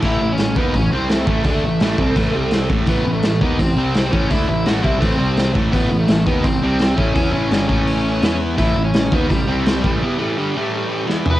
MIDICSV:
0, 0, Header, 1, 5, 480
1, 0, Start_track
1, 0, Tempo, 356506
1, 50, Time_signature, 4, 2, 24, 8
1, 15346, End_track
2, 0, Start_track
2, 0, Title_t, "Lead electric guitar"
2, 0, Program_c, 0, 29
2, 70, Note_on_c, 0, 64, 80
2, 429, Note_off_c, 0, 64, 0
2, 436, Note_on_c, 0, 61, 88
2, 759, Note_off_c, 0, 61, 0
2, 764, Note_on_c, 0, 59, 73
2, 1018, Note_off_c, 0, 59, 0
2, 1018, Note_on_c, 0, 61, 81
2, 1226, Note_off_c, 0, 61, 0
2, 1231, Note_on_c, 0, 60, 78
2, 1461, Note_off_c, 0, 60, 0
2, 1483, Note_on_c, 0, 57, 76
2, 1922, Note_off_c, 0, 57, 0
2, 1938, Note_on_c, 0, 57, 73
2, 3578, Note_off_c, 0, 57, 0
2, 3889, Note_on_c, 0, 59, 84
2, 4209, Note_off_c, 0, 59, 0
2, 4214, Note_on_c, 0, 57, 91
2, 4591, Note_off_c, 0, 57, 0
2, 4596, Note_on_c, 0, 59, 76
2, 4848, Note_off_c, 0, 59, 0
2, 4854, Note_on_c, 0, 60, 91
2, 5543, Note_on_c, 0, 61, 90
2, 5591, Note_off_c, 0, 60, 0
2, 5800, Note_off_c, 0, 61, 0
2, 5800, Note_on_c, 0, 64, 93
2, 6015, Note_off_c, 0, 64, 0
2, 6031, Note_on_c, 0, 64, 89
2, 6260, Note_off_c, 0, 64, 0
2, 6273, Note_on_c, 0, 66, 100
2, 6499, Note_on_c, 0, 64, 84
2, 6501, Note_off_c, 0, 66, 0
2, 6734, Note_off_c, 0, 64, 0
2, 6739, Note_on_c, 0, 60, 90
2, 7420, Note_off_c, 0, 60, 0
2, 7704, Note_on_c, 0, 59, 83
2, 8061, Note_off_c, 0, 59, 0
2, 8066, Note_on_c, 0, 57, 94
2, 8422, Note_off_c, 0, 57, 0
2, 8427, Note_on_c, 0, 59, 76
2, 8671, Note_off_c, 0, 59, 0
2, 8671, Note_on_c, 0, 60, 89
2, 9389, Note_on_c, 0, 61, 93
2, 9419, Note_off_c, 0, 60, 0
2, 9844, Note_off_c, 0, 61, 0
2, 9861, Note_on_c, 0, 61, 85
2, 11260, Note_off_c, 0, 61, 0
2, 11548, Note_on_c, 0, 64, 84
2, 11895, Note_off_c, 0, 64, 0
2, 11900, Note_on_c, 0, 61, 90
2, 12285, Note_off_c, 0, 61, 0
2, 12292, Note_on_c, 0, 59, 76
2, 12498, Note_off_c, 0, 59, 0
2, 12503, Note_on_c, 0, 55, 76
2, 14862, Note_off_c, 0, 55, 0
2, 15225, Note_on_c, 0, 71, 88
2, 15346, Note_off_c, 0, 71, 0
2, 15346, End_track
3, 0, Start_track
3, 0, Title_t, "Distorted electric guitar"
3, 0, Program_c, 1, 30
3, 25, Note_on_c, 1, 52, 85
3, 29, Note_on_c, 1, 45, 91
3, 36, Note_on_c, 1, 57, 90
3, 269, Note_off_c, 1, 52, 0
3, 271, Note_off_c, 1, 45, 0
3, 275, Note_off_c, 1, 57, 0
3, 291, Note_on_c, 1, 45, 54
3, 301, Note_on_c, 1, 52, 65
3, 481, Note_off_c, 1, 45, 0
3, 486, Note_off_c, 1, 52, 0
3, 531, Note_on_c, 1, 52, 69
3, 532, Note_on_c, 1, 45, 59
3, 721, Note_off_c, 1, 52, 0
3, 722, Note_off_c, 1, 45, 0
3, 767, Note_on_c, 1, 51, 79
3, 774, Note_on_c, 1, 58, 85
3, 786, Note_on_c, 1, 63, 81
3, 991, Note_off_c, 1, 51, 0
3, 997, Note_on_c, 1, 45, 58
3, 1002, Note_off_c, 1, 58, 0
3, 1008, Note_on_c, 1, 52, 64
3, 1009, Note_off_c, 1, 63, 0
3, 1193, Note_off_c, 1, 45, 0
3, 1199, Note_off_c, 1, 52, 0
3, 1245, Note_on_c, 1, 48, 80
3, 1254, Note_on_c, 1, 55, 84
3, 1268, Note_on_c, 1, 60, 92
3, 1690, Note_off_c, 1, 48, 0
3, 1696, Note_on_c, 1, 45, 74
3, 1712, Note_off_c, 1, 55, 0
3, 1714, Note_off_c, 1, 60, 0
3, 1717, Note_on_c, 1, 52, 83
3, 1720, Note_on_c, 1, 57, 90
3, 1942, Note_off_c, 1, 57, 0
3, 1944, Note_off_c, 1, 45, 0
3, 1952, Note_off_c, 1, 52, 0
3, 1952, Note_on_c, 1, 50, 84
3, 1958, Note_on_c, 1, 57, 95
3, 1971, Note_on_c, 1, 62, 92
3, 2192, Note_off_c, 1, 50, 0
3, 2194, Note_off_c, 1, 57, 0
3, 2201, Note_off_c, 1, 62, 0
3, 2215, Note_on_c, 1, 45, 58
3, 2225, Note_on_c, 1, 52, 63
3, 2403, Note_off_c, 1, 45, 0
3, 2407, Note_off_c, 1, 52, 0
3, 2447, Note_on_c, 1, 45, 85
3, 2450, Note_on_c, 1, 52, 90
3, 2466, Note_on_c, 1, 57, 101
3, 2676, Note_off_c, 1, 45, 0
3, 2680, Note_off_c, 1, 52, 0
3, 2682, Note_on_c, 1, 48, 75
3, 2689, Note_off_c, 1, 57, 0
3, 2697, Note_on_c, 1, 55, 83
3, 2697, Note_on_c, 1, 60, 93
3, 2900, Note_off_c, 1, 55, 0
3, 2901, Note_off_c, 1, 48, 0
3, 2905, Note_on_c, 1, 52, 94
3, 2907, Note_on_c, 1, 45, 87
3, 2913, Note_off_c, 1, 60, 0
3, 2918, Note_on_c, 1, 57, 99
3, 3148, Note_off_c, 1, 52, 0
3, 3149, Note_off_c, 1, 45, 0
3, 3154, Note_off_c, 1, 57, 0
3, 3160, Note_on_c, 1, 48, 85
3, 3168, Note_on_c, 1, 55, 88
3, 3179, Note_on_c, 1, 60, 99
3, 3629, Note_off_c, 1, 48, 0
3, 3634, Note_on_c, 1, 45, 81
3, 3636, Note_off_c, 1, 55, 0
3, 3642, Note_on_c, 1, 52, 85
3, 3645, Note_off_c, 1, 60, 0
3, 3653, Note_on_c, 1, 57, 90
3, 3847, Note_off_c, 1, 52, 0
3, 3850, Note_off_c, 1, 45, 0
3, 3858, Note_off_c, 1, 57, 0
3, 3863, Note_on_c, 1, 52, 85
3, 3867, Note_on_c, 1, 45, 91
3, 3874, Note_on_c, 1, 57, 105
3, 4099, Note_off_c, 1, 45, 0
3, 4100, Note_off_c, 1, 52, 0
3, 4113, Note_off_c, 1, 57, 0
3, 4115, Note_on_c, 1, 45, 67
3, 4116, Note_on_c, 1, 52, 69
3, 4312, Note_off_c, 1, 45, 0
3, 4312, Note_off_c, 1, 52, 0
3, 4361, Note_on_c, 1, 45, 58
3, 4361, Note_on_c, 1, 52, 67
3, 4555, Note_off_c, 1, 45, 0
3, 4555, Note_off_c, 1, 52, 0
3, 4596, Note_on_c, 1, 51, 79
3, 4602, Note_on_c, 1, 58, 91
3, 4614, Note_on_c, 1, 63, 87
3, 4833, Note_off_c, 1, 51, 0
3, 4836, Note_off_c, 1, 58, 0
3, 4842, Note_off_c, 1, 63, 0
3, 4842, Note_on_c, 1, 45, 58
3, 4845, Note_on_c, 1, 52, 65
3, 5035, Note_off_c, 1, 45, 0
3, 5037, Note_off_c, 1, 52, 0
3, 5074, Note_on_c, 1, 55, 90
3, 5082, Note_on_c, 1, 48, 80
3, 5090, Note_on_c, 1, 60, 99
3, 5533, Note_off_c, 1, 48, 0
3, 5539, Note_on_c, 1, 45, 81
3, 5550, Note_off_c, 1, 55, 0
3, 5556, Note_on_c, 1, 52, 75
3, 5560, Note_off_c, 1, 60, 0
3, 5568, Note_on_c, 1, 57, 87
3, 5784, Note_off_c, 1, 45, 0
3, 5792, Note_off_c, 1, 52, 0
3, 5799, Note_off_c, 1, 57, 0
3, 5802, Note_on_c, 1, 50, 83
3, 5815, Note_on_c, 1, 62, 101
3, 5816, Note_on_c, 1, 57, 88
3, 6036, Note_off_c, 1, 50, 0
3, 6041, Note_off_c, 1, 57, 0
3, 6041, Note_on_c, 1, 45, 63
3, 6042, Note_off_c, 1, 62, 0
3, 6047, Note_on_c, 1, 52, 71
3, 6235, Note_off_c, 1, 45, 0
3, 6237, Note_off_c, 1, 52, 0
3, 6281, Note_on_c, 1, 45, 84
3, 6295, Note_on_c, 1, 52, 80
3, 6302, Note_on_c, 1, 57, 95
3, 6484, Note_off_c, 1, 45, 0
3, 6486, Note_off_c, 1, 57, 0
3, 6489, Note_on_c, 1, 48, 86
3, 6492, Note_on_c, 1, 60, 94
3, 6497, Note_off_c, 1, 52, 0
3, 6503, Note_on_c, 1, 55, 87
3, 6716, Note_off_c, 1, 48, 0
3, 6722, Note_on_c, 1, 45, 88
3, 6726, Note_off_c, 1, 55, 0
3, 6726, Note_off_c, 1, 60, 0
3, 6731, Note_on_c, 1, 57, 88
3, 6732, Note_on_c, 1, 52, 86
3, 6962, Note_off_c, 1, 45, 0
3, 6967, Note_on_c, 1, 48, 78
3, 6971, Note_off_c, 1, 52, 0
3, 6976, Note_on_c, 1, 55, 87
3, 6980, Note_off_c, 1, 57, 0
3, 6986, Note_on_c, 1, 60, 94
3, 7438, Note_off_c, 1, 55, 0
3, 7440, Note_off_c, 1, 48, 0
3, 7440, Note_off_c, 1, 60, 0
3, 7443, Note_on_c, 1, 52, 81
3, 7445, Note_on_c, 1, 45, 77
3, 7446, Note_on_c, 1, 57, 84
3, 7674, Note_off_c, 1, 45, 0
3, 7678, Note_off_c, 1, 57, 0
3, 7686, Note_off_c, 1, 52, 0
3, 7690, Note_on_c, 1, 45, 89
3, 7694, Note_on_c, 1, 57, 107
3, 7702, Note_on_c, 1, 52, 94
3, 7913, Note_off_c, 1, 45, 0
3, 7917, Note_off_c, 1, 52, 0
3, 7930, Note_on_c, 1, 45, 61
3, 7933, Note_on_c, 1, 52, 70
3, 7941, Note_off_c, 1, 57, 0
3, 8138, Note_off_c, 1, 45, 0
3, 8140, Note_off_c, 1, 52, 0
3, 8170, Note_on_c, 1, 45, 65
3, 8184, Note_on_c, 1, 52, 67
3, 8379, Note_off_c, 1, 45, 0
3, 8386, Note_off_c, 1, 52, 0
3, 8439, Note_on_c, 1, 51, 87
3, 8450, Note_on_c, 1, 58, 87
3, 8456, Note_on_c, 1, 63, 94
3, 8668, Note_off_c, 1, 58, 0
3, 8669, Note_off_c, 1, 51, 0
3, 8673, Note_on_c, 1, 52, 68
3, 8674, Note_on_c, 1, 45, 59
3, 8682, Note_off_c, 1, 63, 0
3, 8870, Note_off_c, 1, 52, 0
3, 8871, Note_off_c, 1, 45, 0
3, 8923, Note_on_c, 1, 48, 85
3, 8929, Note_on_c, 1, 55, 83
3, 8935, Note_on_c, 1, 60, 98
3, 9366, Note_off_c, 1, 48, 0
3, 9371, Note_on_c, 1, 45, 80
3, 9377, Note_off_c, 1, 55, 0
3, 9381, Note_off_c, 1, 60, 0
3, 9382, Note_on_c, 1, 52, 82
3, 9386, Note_on_c, 1, 57, 84
3, 9606, Note_off_c, 1, 52, 0
3, 9617, Note_off_c, 1, 45, 0
3, 9622, Note_on_c, 1, 52, 85
3, 9626, Note_on_c, 1, 59, 101
3, 9628, Note_off_c, 1, 57, 0
3, 9634, Note_on_c, 1, 64, 98
3, 9845, Note_off_c, 1, 52, 0
3, 9855, Note_off_c, 1, 59, 0
3, 9857, Note_on_c, 1, 45, 80
3, 9861, Note_on_c, 1, 52, 90
3, 9866, Note_off_c, 1, 64, 0
3, 9871, Note_on_c, 1, 57, 90
3, 10097, Note_on_c, 1, 43, 87
3, 10104, Note_off_c, 1, 45, 0
3, 10105, Note_off_c, 1, 52, 0
3, 10111, Note_off_c, 1, 57, 0
3, 10118, Note_on_c, 1, 55, 95
3, 10120, Note_on_c, 1, 50, 99
3, 10336, Note_off_c, 1, 50, 0
3, 10338, Note_off_c, 1, 55, 0
3, 10341, Note_on_c, 1, 45, 75
3, 10344, Note_off_c, 1, 43, 0
3, 10344, Note_on_c, 1, 52, 93
3, 10347, Note_on_c, 1, 57, 97
3, 11067, Note_off_c, 1, 45, 0
3, 11068, Note_off_c, 1, 52, 0
3, 11069, Note_off_c, 1, 57, 0
3, 11090, Note_on_c, 1, 52, 81
3, 11090, Note_on_c, 1, 59, 83
3, 11097, Note_on_c, 1, 64, 96
3, 11521, Note_off_c, 1, 52, 0
3, 11527, Note_on_c, 1, 45, 91
3, 11539, Note_off_c, 1, 59, 0
3, 11541, Note_off_c, 1, 64, 0
3, 11544, Note_on_c, 1, 52, 92
3, 11547, Note_on_c, 1, 57, 102
3, 11780, Note_off_c, 1, 45, 0
3, 11788, Note_off_c, 1, 52, 0
3, 11790, Note_off_c, 1, 57, 0
3, 11796, Note_on_c, 1, 45, 62
3, 11807, Note_on_c, 1, 52, 62
3, 11994, Note_off_c, 1, 45, 0
3, 11999, Note_off_c, 1, 52, 0
3, 12045, Note_on_c, 1, 45, 61
3, 12050, Note_on_c, 1, 52, 70
3, 12239, Note_off_c, 1, 45, 0
3, 12241, Note_off_c, 1, 52, 0
3, 12282, Note_on_c, 1, 51, 79
3, 12290, Note_on_c, 1, 58, 96
3, 12290, Note_on_c, 1, 63, 92
3, 12508, Note_off_c, 1, 58, 0
3, 12513, Note_off_c, 1, 51, 0
3, 12514, Note_on_c, 1, 52, 67
3, 12518, Note_on_c, 1, 45, 63
3, 12522, Note_off_c, 1, 63, 0
3, 12713, Note_off_c, 1, 52, 0
3, 12715, Note_off_c, 1, 45, 0
3, 12751, Note_on_c, 1, 48, 79
3, 12761, Note_on_c, 1, 55, 90
3, 12766, Note_on_c, 1, 60, 98
3, 13229, Note_off_c, 1, 55, 0
3, 13231, Note_off_c, 1, 48, 0
3, 13234, Note_on_c, 1, 52, 88
3, 13237, Note_on_c, 1, 45, 82
3, 13241, Note_off_c, 1, 60, 0
3, 13255, Note_on_c, 1, 57, 88
3, 13475, Note_off_c, 1, 52, 0
3, 13476, Note_off_c, 1, 45, 0
3, 13485, Note_off_c, 1, 57, 0
3, 13502, Note_on_c, 1, 52, 87
3, 13514, Note_on_c, 1, 59, 99
3, 13514, Note_on_c, 1, 64, 102
3, 13708, Note_off_c, 1, 52, 0
3, 13719, Note_off_c, 1, 59, 0
3, 13719, Note_off_c, 1, 64, 0
3, 13721, Note_on_c, 1, 45, 81
3, 13724, Note_on_c, 1, 52, 87
3, 13725, Note_on_c, 1, 57, 96
3, 13958, Note_off_c, 1, 45, 0
3, 13959, Note_off_c, 1, 52, 0
3, 13960, Note_off_c, 1, 57, 0
3, 13974, Note_on_c, 1, 50, 97
3, 13976, Note_on_c, 1, 43, 90
3, 13984, Note_on_c, 1, 55, 99
3, 14205, Note_off_c, 1, 43, 0
3, 14205, Note_off_c, 1, 50, 0
3, 14210, Note_off_c, 1, 55, 0
3, 14217, Note_on_c, 1, 52, 88
3, 14218, Note_on_c, 1, 45, 86
3, 14228, Note_on_c, 1, 57, 94
3, 14880, Note_off_c, 1, 52, 0
3, 14891, Note_off_c, 1, 45, 0
3, 14897, Note_on_c, 1, 52, 77
3, 14908, Note_off_c, 1, 57, 0
3, 14912, Note_on_c, 1, 59, 87
3, 14913, Note_on_c, 1, 64, 96
3, 15346, Note_off_c, 1, 52, 0
3, 15346, Note_off_c, 1, 59, 0
3, 15346, Note_off_c, 1, 64, 0
3, 15346, End_track
4, 0, Start_track
4, 0, Title_t, "Picked electric bass"
4, 0, Program_c, 2, 34
4, 36, Note_on_c, 2, 33, 81
4, 265, Note_off_c, 2, 33, 0
4, 286, Note_on_c, 2, 33, 74
4, 510, Note_off_c, 2, 33, 0
4, 522, Note_on_c, 2, 33, 76
4, 748, Note_off_c, 2, 33, 0
4, 757, Note_on_c, 2, 39, 88
4, 984, Note_off_c, 2, 39, 0
4, 999, Note_on_c, 2, 33, 77
4, 1225, Note_off_c, 2, 33, 0
4, 1231, Note_on_c, 2, 36, 89
4, 1684, Note_off_c, 2, 36, 0
4, 1717, Note_on_c, 2, 33, 95
4, 1930, Note_off_c, 2, 33, 0
4, 1938, Note_on_c, 2, 38, 82
4, 2174, Note_off_c, 2, 38, 0
4, 2187, Note_on_c, 2, 33, 75
4, 2419, Note_off_c, 2, 33, 0
4, 2436, Note_on_c, 2, 33, 93
4, 2660, Note_off_c, 2, 33, 0
4, 2668, Note_on_c, 2, 36, 90
4, 2892, Note_off_c, 2, 36, 0
4, 2900, Note_on_c, 2, 33, 89
4, 3135, Note_off_c, 2, 33, 0
4, 3146, Note_on_c, 2, 36, 86
4, 3601, Note_off_c, 2, 36, 0
4, 3634, Note_on_c, 2, 33, 96
4, 3852, Note_off_c, 2, 33, 0
4, 3860, Note_on_c, 2, 33, 88
4, 4095, Note_off_c, 2, 33, 0
4, 4125, Note_on_c, 2, 33, 78
4, 4348, Note_off_c, 2, 33, 0
4, 4357, Note_on_c, 2, 33, 75
4, 4584, Note_off_c, 2, 33, 0
4, 4595, Note_on_c, 2, 39, 88
4, 4823, Note_off_c, 2, 39, 0
4, 4836, Note_on_c, 2, 33, 76
4, 5057, Note_off_c, 2, 33, 0
4, 5065, Note_on_c, 2, 36, 81
4, 5520, Note_off_c, 2, 36, 0
4, 5568, Note_on_c, 2, 33, 89
4, 5789, Note_off_c, 2, 33, 0
4, 5799, Note_on_c, 2, 38, 82
4, 6025, Note_off_c, 2, 38, 0
4, 6046, Note_on_c, 2, 33, 72
4, 6268, Note_off_c, 2, 33, 0
4, 6281, Note_on_c, 2, 33, 89
4, 6505, Note_off_c, 2, 33, 0
4, 6516, Note_on_c, 2, 36, 85
4, 6743, Note_off_c, 2, 36, 0
4, 6751, Note_on_c, 2, 33, 87
4, 6980, Note_off_c, 2, 33, 0
4, 7000, Note_on_c, 2, 36, 82
4, 7448, Note_off_c, 2, 36, 0
4, 7472, Note_on_c, 2, 33, 91
4, 7700, Note_off_c, 2, 33, 0
4, 7727, Note_on_c, 2, 33, 87
4, 7948, Note_off_c, 2, 33, 0
4, 7957, Note_on_c, 2, 33, 76
4, 8183, Note_off_c, 2, 33, 0
4, 8197, Note_on_c, 2, 33, 77
4, 8423, Note_off_c, 2, 33, 0
4, 8444, Note_on_c, 2, 39, 85
4, 8667, Note_off_c, 2, 39, 0
4, 8672, Note_on_c, 2, 33, 75
4, 8901, Note_off_c, 2, 33, 0
4, 8911, Note_on_c, 2, 36, 88
4, 9364, Note_off_c, 2, 36, 0
4, 9397, Note_on_c, 2, 33, 99
4, 9623, Note_off_c, 2, 33, 0
4, 9632, Note_on_c, 2, 40, 92
4, 9858, Note_off_c, 2, 40, 0
4, 9866, Note_on_c, 2, 33, 97
4, 10098, Note_off_c, 2, 33, 0
4, 10112, Note_on_c, 2, 31, 87
4, 10341, Note_off_c, 2, 31, 0
4, 10361, Note_on_c, 2, 33, 82
4, 11033, Note_off_c, 2, 33, 0
4, 11067, Note_on_c, 2, 40, 88
4, 11523, Note_off_c, 2, 40, 0
4, 11557, Note_on_c, 2, 33, 87
4, 11785, Note_off_c, 2, 33, 0
4, 11796, Note_on_c, 2, 33, 78
4, 12025, Note_off_c, 2, 33, 0
4, 12039, Note_on_c, 2, 33, 77
4, 12266, Note_off_c, 2, 33, 0
4, 12274, Note_on_c, 2, 39, 93
4, 12504, Note_off_c, 2, 39, 0
4, 12525, Note_on_c, 2, 33, 83
4, 12750, Note_off_c, 2, 33, 0
4, 12770, Note_on_c, 2, 36, 85
4, 13217, Note_off_c, 2, 36, 0
4, 13258, Note_on_c, 2, 33, 95
4, 13477, Note_off_c, 2, 33, 0
4, 15346, End_track
5, 0, Start_track
5, 0, Title_t, "Drums"
5, 29, Note_on_c, 9, 49, 92
5, 37, Note_on_c, 9, 36, 93
5, 164, Note_off_c, 9, 49, 0
5, 171, Note_off_c, 9, 36, 0
5, 508, Note_on_c, 9, 46, 52
5, 520, Note_on_c, 9, 38, 102
5, 642, Note_off_c, 9, 46, 0
5, 654, Note_off_c, 9, 38, 0
5, 756, Note_on_c, 9, 36, 99
5, 891, Note_off_c, 9, 36, 0
5, 996, Note_on_c, 9, 36, 84
5, 1000, Note_on_c, 9, 46, 45
5, 1131, Note_off_c, 9, 36, 0
5, 1134, Note_off_c, 9, 46, 0
5, 1469, Note_on_c, 9, 46, 42
5, 1482, Note_on_c, 9, 38, 98
5, 1604, Note_off_c, 9, 46, 0
5, 1616, Note_off_c, 9, 38, 0
5, 1710, Note_on_c, 9, 36, 100
5, 1845, Note_off_c, 9, 36, 0
5, 1937, Note_on_c, 9, 46, 50
5, 1948, Note_on_c, 9, 36, 104
5, 2071, Note_off_c, 9, 46, 0
5, 2082, Note_off_c, 9, 36, 0
5, 2426, Note_on_c, 9, 46, 49
5, 2438, Note_on_c, 9, 38, 107
5, 2561, Note_off_c, 9, 46, 0
5, 2573, Note_off_c, 9, 38, 0
5, 2669, Note_on_c, 9, 36, 101
5, 2803, Note_off_c, 9, 36, 0
5, 2906, Note_on_c, 9, 46, 49
5, 2907, Note_on_c, 9, 36, 99
5, 3040, Note_off_c, 9, 46, 0
5, 3042, Note_off_c, 9, 36, 0
5, 3379, Note_on_c, 9, 46, 50
5, 3391, Note_on_c, 9, 38, 99
5, 3514, Note_off_c, 9, 46, 0
5, 3526, Note_off_c, 9, 38, 0
5, 3631, Note_on_c, 9, 36, 103
5, 3766, Note_off_c, 9, 36, 0
5, 3858, Note_on_c, 9, 46, 52
5, 3868, Note_on_c, 9, 36, 105
5, 3992, Note_off_c, 9, 46, 0
5, 4003, Note_off_c, 9, 36, 0
5, 4345, Note_on_c, 9, 46, 52
5, 4357, Note_on_c, 9, 38, 111
5, 4479, Note_off_c, 9, 46, 0
5, 4492, Note_off_c, 9, 38, 0
5, 4595, Note_on_c, 9, 36, 92
5, 4729, Note_off_c, 9, 36, 0
5, 4838, Note_on_c, 9, 36, 86
5, 4840, Note_on_c, 9, 46, 53
5, 4973, Note_off_c, 9, 36, 0
5, 4974, Note_off_c, 9, 46, 0
5, 5311, Note_on_c, 9, 46, 42
5, 5324, Note_on_c, 9, 38, 98
5, 5446, Note_off_c, 9, 46, 0
5, 5458, Note_off_c, 9, 38, 0
5, 5560, Note_on_c, 9, 36, 103
5, 5695, Note_off_c, 9, 36, 0
5, 5793, Note_on_c, 9, 46, 46
5, 5801, Note_on_c, 9, 36, 101
5, 5928, Note_off_c, 9, 46, 0
5, 5935, Note_off_c, 9, 36, 0
5, 6273, Note_on_c, 9, 46, 48
5, 6285, Note_on_c, 9, 38, 107
5, 6408, Note_off_c, 9, 46, 0
5, 6420, Note_off_c, 9, 38, 0
5, 6521, Note_on_c, 9, 36, 99
5, 6656, Note_off_c, 9, 36, 0
5, 6760, Note_on_c, 9, 36, 107
5, 6766, Note_on_c, 9, 46, 47
5, 6894, Note_off_c, 9, 36, 0
5, 6901, Note_off_c, 9, 46, 0
5, 7230, Note_on_c, 9, 46, 48
5, 7242, Note_on_c, 9, 38, 97
5, 7365, Note_off_c, 9, 46, 0
5, 7377, Note_off_c, 9, 38, 0
5, 7476, Note_on_c, 9, 36, 98
5, 7611, Note_off_c, 9, 36, 0
5, 7719, Note_on_c, 9, 36, 97
5, 7726, Note_on_c, 9, 46, 50
5, 7854, Note_off_c, 9, 36, 0
5, 7860, Note_off_c, 9, 46, 0
5, 8190, Note_on_c, 9, 46, 57
5, 8202, Note_on_c, 9, 38, 112
5, 8324, Note_off_c, 9, 46, 0
5, 8337, Note_off_c, 9, 38, 0
5, 8439, Note_on_c, 9, 36, 99
5, 8573, Note_off_c, 9, 36, 0
5, 8675, Note_on_c, 9, 36, 93
5, 8679, Note_on_c, 9, 46, 54
5, 8810, Note_off_c, 9, 36, 0
5, 8814, Note_off_c, 9, 46, 0
5, 9149, Note_on_c, 9, 46, 45
5, 9161, Note_on_c, 9, 38, 97
5, 9283, Note_off_c, 9, 46, 0
5, 9295, Note_off_c, 9, 38, 0
5, 9397, Note_on_c, 9, 36, 89
5, 9532, Note_off_c, 9, 36, 0
5, 9637, Note_on_c, 9, 36, 110
5, 9638, Note_on_c, 9, 46, 49
5, 9772, Note_off_c, 9, 36, 0
5, 9773, Note_off_c, 9, 46, 0
5, 10117, Note_on_c, 9, 46, 46
5, 10129, Note_on_c, 9, 38, 113
5, 10251, Note_off_c, 9, 46, 0
5, 10263, Note_off_c, 9, 38, 0
5, 10357, Note_on_c, 9, 36, 93
5, 10491, Note_off_c, 9, 36, 0
5, 10597, Note_on_c, 9, 46, 49
5, 10732, Note_off_c, 9, 46, 0
5, 11074, Note_on_c, 9, 46, 48
5, 11086, Note_on_c, 9, 38, 102
5, 11209, Note_off_c, 9, 46, 0
5, 11221, Note_off_c, 9, 38, 0
5, 11556, Note_on_c, 9, 36, 112
5, 11564, Note_on_c, 9, 46, 56
5, 11690, Note_off_c, 9, 36, 0
5, 11698, Note_off_c, 9, 46, 0
5, 12034, Note_on_c, 9, 46, 52
5, 12046, Note_on_c, 9, 38, 110
5, 12169, Note_off_c, 9, 46, 0
5, 12181, Note_off_c, 9, 38, 0
5, 12278, Note_on_c, 9, 36, 108
5, 12413, Note_off_c, 9, 36, 0
5, 12524, Note_on_c, 9, 36, 87
5, 12526, Note_on_c, 9, 46, 49
5, 12659, Note_off_c, 9, 36, 0
5, 12661, Note_off_c, 9, 46, 0
5, 13005, Note_on_c, 9, 46, 48
5, 13017, Note_on_c, 9, 38, 108
5, 13140, Note_off_c, 9, 46, 0
5, 13152, Note_off_c, 9, 38, 0
5, 13251, Note_on_c, 9, 36, 102
5, 13385, Note_off_c, 9, 36, 0
5, 14938, Note_on_c, 9, 38, 55
5, 15072, Note_off_c, 9, 38, 0
5, 15157, Note_on_c, 9, 43, 76
5, 15291, Note_off_c, 9, 43, 0
5, 15346, End_track
0, 0, End_of_file